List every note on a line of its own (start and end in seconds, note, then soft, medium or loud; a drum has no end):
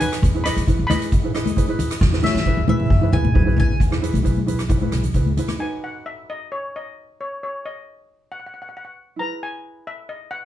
0.00 0.17 D#4 medium
0.00 0.18 F#4 medium
0.00 0.18 B4 medium
0.00 0.43 B4 medium
0.00 0.41 G#5 loud
0.00 closed hi-hat medium
0.00 low conga medium
0.13 cross-stick medium
0.13 closed hi-hat medium
0.22 0.44 E2 loud
0.22 kick loud
0.22 closed hi-hat medium
0.34 0.41 E4 medium
0.34 0.42 G#4 medium
0.34 0.42 B4 medium
0.44 0.59 E4 medium
0.44 0.60 G#4 medium
0.44 0.60 B4 medium
0.44 0.87 D#5 medium
0.44 0.86 B5 loud
0.44 cross-stick medium
0.44 closed hi-hat medium
0.56 0.78 E3 medium
0.56 closed hi-hat medium
0.67 0.81 E4 medium
0.67 0.82 G#4 medium
0.67 0.82 B4 medium
0.67 kick medium
0.67 closed hi-hat medium
0.67 low conga medium
0.79 1.65 E2 medium
0.87 1.10 E4 medium
0.87 1.10 G#4 medium
0.87 3.32 D#5 medium
0.87 3.30 B5 loud
0.87 cross-stick medium
0.87 closed hi-hat medium
0.87 high conga medium
0.87 low conga medium
0.91 1.11 B4 medium
1.02 closed hi-hat medium
1.12 kick loud
1.12 closed hi-hat medium
1.24 1.30 E4 medium
1.24 1.31 G#4 medium
1.24 1.31 B4 medium
1.34 1.48 E4 medium
1.34 1.49 G#4 medium
1.34 1.49 B4 medium
1.34 2.27 D#5 medium
1.34 cross-stick medium
1.34 closed hi-hat medium
1.46 closed hi-hat medium
1.46 high conga medium
1.56 1.64 E4 medium
1.56 1.64 G#4 medium
1.56 1.65 B4 medium
1.56 kick medium
1.56 closed hi-hat medium
1.68 1.95 E4 medium
1.68 1.95 G#4 medium
1.68 1.96 B4 loud
1.79 closed hi-hat medium
1.79 low conga medium
1.91 cross-stick medium
1.91 closed hi-hat medium
2.01 2.23 E2 loud
2.01 kick loud
2.01 snare medium
2.12 2.19 E4 medium
2.12 2.20 G#4 medium
2.12 2.20 B4 medium
2.12 snare medium
2.22 2.37 E4 medium
2.22 2.37 G#4 medium
2.22 2.38 C#5 medium
2.22 2.65 E5 medium
2.22 snare medium
2.22 high conga medium
2.34 2.56 E3 medium
2.34 snare medium
2.45 2.59 E4 medium
2.45 2.60 G#4 medium
2.45 2.60 B4 medium
2.45 kick medium
2.45 high tom medium
2.45 low conga medium
2.57 3.10 E2 medium
2.57 high tom medium
2.67 2.88 E4 medium
2.67 2.89 G#4 medium
2.67 2.89 B4 loud
2.67 3.15 E5 medium
2.67 high tom medium
2.67 high conga medium
2.67 low conga medium
2.80 mid tom medium
2.80 high conga medium
2.90 kick loud
2.90 mid tom medium
3.01 3.08 E4 medium
3.01 3.09 G#4 medium
3.01 3.09 B4 medium
3.01 mid tom medium
3.12 3.33 G#2 medium
3.12 3.27 E4 medium
3.12 3.27 G#4 medium
3.12 3.28 B4 medium
3.12 3.58 G#5 loud
3.12 mid tom medium
3.12 low conga medium
3.25 mid tom medium
3.25 high conga medium
3.34 3.56 F#2 medium
3.34 3.42 E4 medium
3.34 3.42 G#4 medium
3.34 3.43 B4 medium
3.34 kick medium
3.34 mid tom medium
3.45 3.73 E4 medium
3.45 3.73 G#4 medium
3.45 3.74 B4 loud
3.45 floor tom medium
3.56 3.77 E2 medium
3.56 3.80 G#5 medium
3.56 floor tom loud
3.56 low conga medium
3.70 floor tom medium
3.80 4.13 E2 medium
3.80 kick loud
3.80 closed hi-hat medium
3.91 3.98 E4 medium
3.91 3.98 G#4 medium
3.91 3.98 B4 medium
3.91 cross-stick medium
4.02 4.16 E4 medium
4.02 4.17 G#4 medium
4.02 4.17 B4 medium
4.02 closed hi-hat medium
4.14 4.88 B1 medium
4.14 closed hi-hat medium
4.14 high conga medium
4.23 4.38 E4 medium
4.23 4.38 G#4 medium
4.23 4.39 B4 medium
4.23 kick medium
4.23 closed hi-hat medium
4.37 high conga medium
4.46 4.61 E4 medium
4.46 4.61 G#4 medium
4.46 4.62 B4 medium
4.46 closed hi-hat medium
4.46 low conga medium
4.59 cross-stick medium
4.59 closed hi-hat medium
4.68 4.76 E4 medium
4.68 4.77 G#4 medium
4.68 4.77 B4 medium
4.68 kick loud
4.68 closed hi-hat medium
4.81 5.01 E4 medium
4.81 5.02 G#4 medium
4.81 5.02 B4 medium
4.81 high conga medium
4.92 5.13 B1 medium
4.92 cross-stick medium
4.92 closed hi-hat medium
5.03 closed hi-hat medium
5.03 low conga medium
5.14 5.36 C#2 medium
5.14 5.28 E4 medium
5.14 5.29 G#4 medium
5.14 5.29 B4 medium
5.14 kick medium
5.14 closed hi-hat medium
5.26 high conga medium
5.37 5.58 E4 medium
5.37 5.58 G#4 medium
5.37 5.58 B4 medium
5.37 closed hi-hat medium
5.37 low conga medium
5.48 cross-stick medium
5.48 closed hi-hat medium
5.48 high conga medium
5.58 9.14 D#4 medium
5.58 9.15 F#4 soft
5.58 5.83 G#5 medium
5.62 9.16 B4 medium
5.84 6.06 F#5 medium
6.06 6.28 E5 medium
6.30 6.51 D#5 medium
6.52 6.74 C#5 medium
6.76 7.20 D#5 medium
7.21 7.42 C#5 medium
7.43 7.53 C#5 medium
7.66 8.33 D#5 medium
8.32 8.38 F#5 medium
8.40 8.45 F#5 soft
8.46 8.52 F#5 medium
8.54 8.60 F#5 soft
8.62 8.68 F#5 medium
8.69 8.75 F#5 soft
8.77 8.83 F#5 medium
8.85 8.90 F#5 soft
9.16 10.45 E4 medium
9.16 10.45 G#4 soft
9.16 10.45 B4 medium
9.16 9.42 A#5 medium
9.43 9.84 G#5 medium
9.87 10.10 E5 medium
10.09 10.30 D#5 medium
10.31 10.45 F#5 medium